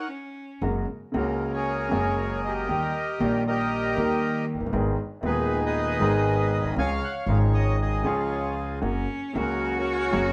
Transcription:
0.08 cello C#4
0.61 upright bass F#1, grand piano F#2 C#3 F#3 G#3 A#3 F#4
1.13 grand piano C#2 C#3 G#3 A#3 F#4, upright bass C#2, bandoneon A#4
1.18 bandoneon C#4
1.54 bandoneon G#4 A#4 C#5
1.89 upright bass F#1, grand piano F#2 C#3 F#3 G#3 A#3
1.93 grand piano F#4
2.45 bandoneon G4 A#4 D#5
2.68 grand piano D#2 D#3 G3 A#3 G4, upright bass D#2
3.18 upright bass A#1, grand piano A#1 A#2 D#3 G3 A#3 G4
3.47 bandoneon G4 A#4 D#5
3.95 upright bass D#2, grand piano D#2 D#3 G3 A#3
3.99 grand piano G4
4.54 upright bass F1, grand piano F1
4.60 upright bass F#1, grand piano F#1
4.66 grand piano G1, upright bass G1
4.72 upright bass G#1, grand piano G#1 G#2 D#3 G#3 B3 G#4
5.21 grand piano D#1 D#2 D#3 G#3 B3, upright bass D#2
5.25 bandoneon D#4 G#4 B4, grand piano G#4
5.66 bandoneon G#4 B4 D#5
5.99 upright bass G#1, grand piano G#1 G#2 D#3 G#3 B3
6.03 grand piano G#4
6.57 upright bass A#1, grand piano A#1
6.64 upright bass B1, grand piano B1
6.70 upright bass C2, grand piano C2
6.76 upright bass C#2, grand piano C#2 C#3 F3 G#3 C#4 G#4, bandoneon C#5 F5 G#5
7.04 bandoneon F#5
7.26 upright bass G#1, grand piano G#1 G#2 F3 G#3 C#4, bandoneon F5
7.31 grand piano G#4
7.54 bandoneon D#5
7.82 bandoneon G#4 D#5
8.03 upright bass C#2, grand piano C#2 C#3 F3 G#3 C#4, bandoneon F4 G#4 C#5
8.07 grand piano G#4
8.81 upright bass F#1, grand piano F#2 C#3 F#3 A#3 F#4, cello C#4
9.33 grand piano C#2 C#3 F#3 A#3 F#4, upright bass C#2, cello F#4
9.38 bandoneon C#4 F#4 A#4
9.78 bandoneon F#4 A#4 C#5
10.11 upright bass F#1, grand piano F#2 C#3 F#3 A#3
10.15 grand piano F#4

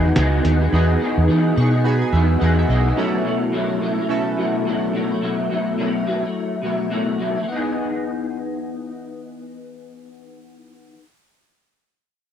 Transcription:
Already playing: fingered electric bass E2, clean electric guitar E3 B3 D#4 G#4, synth keys B3 D#4 F#4 G#4
0.06 snare
0.16 fingered electric bass C#2, clean electric guitar E3 B3 D#4 G#4, snare, closed hi-hat
0.44 fingered electric bass D#2, clean electric guitar E3 B3 D#4 G#4, closed hi-hat
0.61 clean electric guitar B3 D#4 G#4
0.72 fingered electric bass E2, clean electric guitar E3 B3 D#4 G#4, synth keys B3 D#4 F#4 G#4
1.00 clean electric guitar E3 B3 D#4
1.04 clean electric guitar G#4
1.18 fingered electric bass E2
1.28 clean electric guitar E3 B3 D#4 G#4, fingered electric bass E3
1.56 fingered electric bass B2, clean electric guitar E3 B3 D#4 G#4, synth keys C#6
1.73 clean electric guitar B3 D#4 G#4
1.84 synth keys B3 D#4 F#4 G#4 B5
2.02 synth keys G#5
2.13 fingered electric bass E2, clean electric guitar E3 B3 D#4 G#4, synth keys E5
2.40 fingered electric bass E2, clean electric guitar E3 B3 D#4 G#4, synth keys F#5
2.59 synth keys E5
2.68 fingered electric bass B1, clean electric guitar E3 B3 D#4 G#4, synth keys D#5
2.85 clean electric guitar B3 D#4 G#4
2.96 synth keys B2 C#4 D#4 F#4 A4, clean electric guitar B2 F#3 A3 E4
3.04 synth keys E4
3.24 clean electric guitar B2 F#3 A3 E4
3.52 clean electric guitar B2 F#3 A3 E4
3.81 clean electric guitar B2 F#3 A3 E4
3.98 clean electric guitar F#3 A3 E4
4.09 synth keys B2 C#4 E4 F#4 A4
4.37 clean electric guitar B2 F#3 A3 E4
4.65 clean electric guitar B2 F#3 A3 E4
4.93 clean electric guitar B2 F#3 A3 E4
5.11 clean electric guitar F#3 A3 E4
5.22 clean electric guitar B2 F#3 A3 E4
5.50 clean electric guitar B2 F#3 A3 E4
5.78 clean electric guitar B2 F#3 A3 E4
6.06 clean electric guitar B2 F#3 A3 E4
6.23 clean electric guitar F#3 A3 E4
6.62 clean electric guitar B2 F#3 A3 E4
6.90 clean electric guitar B2 F#3 A3 E4
7.18 clean electric guitar B2 F#3 A3 E4
7.35 clean electric guitar F#3 A3 E4
7.43 clean electric guitar E3
7.48 clean electric guitar B3
7.52 clean electric guitar D#4 G#4

